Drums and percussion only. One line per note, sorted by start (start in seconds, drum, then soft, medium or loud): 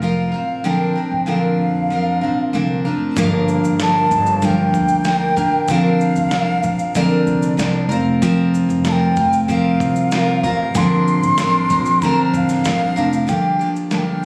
3.16 kick loud
3.16 shaker medium
3.48 shaker medium
3.64 shaker medium
3.79 snare loud
3.79 shaker medium
4.11 kick medium
4.11 shaker medium
4.26 shaker soft
4.42 kick medium
4.42 shaker medium
4.74 kick medium
4.74 shaker soft
4.88 shaker medium
5.04 snare loud
5.04 shaker medium
5.37 kick medium
5.37 shaker soft
5.68 kick loud
5.68 shaker medium
6.01 shaker medium
6.16 shaker medium
6.31 snare loud
6.31 shaker medium
6.63 kick medium
6.63 shaker medium
6.79 shaker medium
6.95 kick medium
6.95 shaker medium
7.27 shaker medium
7.42 shaker medium
7.59 snare loud
7.59 shaker medium
7.91 shaker medium
8.22 kick loud
8.22 shaker medium
8.54 shaker medium
8.70 shaker medium
8.84 snare loud
8.84 shaker medium
9.16 kick medium
9.16 shaker medium
9.33 shaker medium
9.49 kick medium
9.49 shaker medium
9.80 kick medium
9.80 shaker soft
9.96 shaker medium
10.11 snare loud
10.11 shaker medium
10.44 kick medium
10.44 shaker soft
10.75 kick loud
10.75 shaker medium
11.07 shaker medium
11.23 shaker medium
11.38 snare loud
11.38 shaker medium
11.70 kick loud
11.70 shaker medium
11.86 shaker soft
12.02 kick medium
12.02 shaker medium
12.34 kick medium
12.34 shaker soft
12.49 snare soft
12.49 shaker medium
12.65 snare loud
12.65 shaker medium
12.97 shaker soft
13.13 shaker soft
13.29 kick loud
13.29 shaker medium
13.61 shaker soft
13.76 shaker soft
13.91 snare medium
13.91 shaker soft